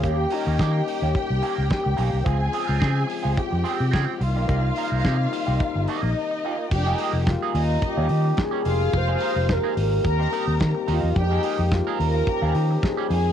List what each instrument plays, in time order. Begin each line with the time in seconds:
Already playing: french horn section A#3
0.03 fingered electric bass D#2, french horn section D#3 G3 C#4 G4, clean electric guitar A#3 C#4 G4, string section G4 G5, alto flute G4, kick, closed hi-hat
0.18 muted clean electric guitar stroke
0.31 clean electric guitar A#3 C#4 A#4, alto flute D#4, open hi-hat
0.46 fingered electric bass D#2, clean electric guitar A#3 C#4 A#4
0.59 fingered electric bass D#3, clean electric guitar A#3 C#4 G4, kick, snare, closed hi-hat
0.74 muted clean electric guitar stroke
0.88 muted clean electric guitar stroke, open hi-hat
1.02 fingered electric bass D#2, clean electric guitar A#3 C#4 G4
1.15 kick, closed hi-hat
1.29 fingered electric bass C2, muted clean electric guitar stroke
1.42 clean electric guitar A#3 C#4 G4, open hi-hat
1.57 fingered electric bass C#2, muted clean electric guitar stroke
1.70 muted clean electric guitar stroke, kick, snare, closed hi-hat
1.84 fingered electric bass C#2, muted clean electric guitar stroke
1.97 fingered electric bass B1, clean electric guitar A#3 C#4 G4, open hi-hat
2.12 fingered electric bass C2, muted clean electric guitar stroke
2.24 fingered electric bass C#2, french horn section C#3 F3 G#3 C4 F4, clean electric guitar C4 F4 G#4, string section G#4 G#5, kick, closed hi-hat
2.40 muted clean electric guitar stroke
2.53 clean electric guitar C4 F4 G#4, open hi-hat
2.67 fingered electric bass C#2, clean electric guitar C4 F4 A#4
2.80 fingered electric bass C#3, clean electric guitar C4 F4 G#4, kick, snare, closed hi-hat
2.94 muted clean electric guitar stroke
3.07 muted clean electric guitar stroke, open hi-hat
3.23 fingered electric bass C#2, clean electric guitar C4 F4 G#4
3.37 string section G4 G5, kick, closed hi-hat
3.51 fingered electric bass F2, muted clean electric guitar stroke
3.64 clean electric guitar C4 F4 G#4, open hi-hat
3.78 fingered electric bass C3, muted clean electric guitar stroke
3.91 fingered electric bass C#3, clean electric guitar C4 F4 G#4, kick, snare, closed hi-hat
4.07 muted clean electric guitar stroke
4.20 fingered electric bass C2, french horn section C3 D#3 G3 A#3 D#4, string section F4 F5, muted clean electric guitar stroke, open hi-hat
4.36 fingered electric bass B1, clean electric guitar A#3 D#4 G4
4.48 fingered electric bass C2, clean electric guitar A#3 D#4 G4, kick, closed hi-hat
4.64 muted clean electric guitar stroke
4.76 clean electric guitar A#3 D#4 A#4, open hi-hat
4.92 fingered electric bass C2, clean electric guitar A#3 D#4 A#4
5.05 fingered electric bass C3, clean electric guitar A#3 D#4 G4, kick, snare, closed hi-hat
5.19 muted clean electric guitar stroke
5.33 muted clean electric guitar stroke, open hi-hat
5.47 fingered electric bass C2, clean electric guitar A#3 D#4 G4
5.60 kick, closed hi-hat
5.76 fingered electric bass G1, muted clean electric guitar stroke
5.86 clean electric guitar A#3 D#4 G4, string section D#4 D#5, open hi-hat
6.03 fingered electric bass A#1, muted clean electric guitar stroke
6.31 muted clean electric guitar stroke
6.45 clean electric guitar A#3 D#4 G4, alto flute F4
6.59 muted clean electric guitar stroke
6.71 fingered electric bass F1, french horn section D#3 G3 G#3 A#3 F4, alto flute D#4, string section G4 G5, muted clean electric guitar stroke, kick, crash
6.86 clean electric guitar A#3 D#4 G#4
6.98 clean electric guitar A#3 D#4 G#4, open hi-hat
7.13 fingered electric bass F1, muted clean electric guitar stroke
7.27 alto flute F4, muted clean electric guitar stroke, kick, snare, closed hi-hat
7.42 clean electric guitar A#3 D#4 G#4
7.54 fingered electric bass D#2, french horn section D#3 C#4, string section D#4 D#5, muted clean electric guitar stroke, open hi-hat
7.69 muted clean electric guitar stroke
7.82 alto flute G4, muted clean electric guitar stroke, kick, closed hi-hat
7.97 fingered electric bass D#2, clean electric guitar G3 C#4 F4
8.09 fingered electric bass D#3, open hi-hat
8.24 muted clean electric guitar stroke
8.37 muted clean electric guitar stroke, kick, snare, closed hi-hat
8.41 alto flute G#4
8.51 clean electric guitar G3 C#4 G4
8.64 fingered electric bass F1, french horn section F3 G#3 D#4 G4, string section F4 F5, muted clean electric guitar stroke, open hi-hat
8.80 muted clean electric guitar stroke
8.93 fingered electric bass F1, alto flute C5, muted clean electric guitar stroke, kick, closed hi-hat
9.08 clean electric guitar D#4 G#4 C5
9.20 clean electric guitar D#4 G#4 A#4, open hi-hat
9.36 fingered electric bass F1, muted clean electric guitar stroke
9.49 alto flute A#4, muted clean electric guitar stroke, kick, snare, closed hi-hat
9.63 clean electric guitar D#4 G#4 A#4
9.76 fingered electric bass G#1, alto flute A#4, muted clean electric guitar stroke, open hi-hat
9.91 muted clean electric guitar stroke
10.04 fingered electric bass D#2, french horn section D#3 G3 C4, string section A#4 A#5, muted clean electric guitar stroke, kick, closed hi-hat
10.19 clean electric guitar D#4 G4 C5
10.32 clean electric guitar D#4 G4 A#4, open hi-hat
10.48 fingered electric bass D#2, muted clean electric guitar stroke
10.60 fingered electric bass D#3, kick, snare, closed hi-hat
10.74 muted clean electric guitar stroke
10.87 fingered electric bass D#2, clean electric guitar D#4 G4 A#4, alto flute F4, open hi-hat
11.03 fingered electric bass E2, muted clean electric guitar stroke
11.16 fingered electric bass F2, french horn section F3 G#3 D#4, alto flute D#4, string section G4 G5, muted clean electric guitar stroke, kick, closed hi-hat
11.30 clean electric guitar D#4 G#4 A#4
11.43 clean electric guitar D#4 G#4 A#4, open hi-hat
11.58 fingered electric bass F2, muted clean electric guitar stroke
11.72 alto flute F4, muted clean electric guitar stroke, kick, snare, closed hi-hat
11.87 clean electric guitar D#4 G#4 A#4
11.98 fingered electric bass D#2, french horn section C#4, string section A#4 A#5, muted clean electric guitar stroke, open hi-hat
12.14 muted clean electric guitar stroke
12.27 alto flute G4, muted clean electric guitar stroke, kick, closed hi-hat
12.42 fingered electric bass D#2, clean electric guitar G3 C#4 F4
12.55 fingered electric bass D#3, muted clean electric guitar stroke, open hi-hat
12.70 muted clean electric guitar stroke
12.83 alto flute G#4, muted clean electric guitar stroke, kick, snare, closed hi-hat
12.97 clean electric guitar G3 C#4 G4
13.09 fingered electric bass F2, french horn section G#3 F4, string section G#4 G#5, muted clean electric guitar stroke, open hi-hat
13.25 muted clean electric guitar stroke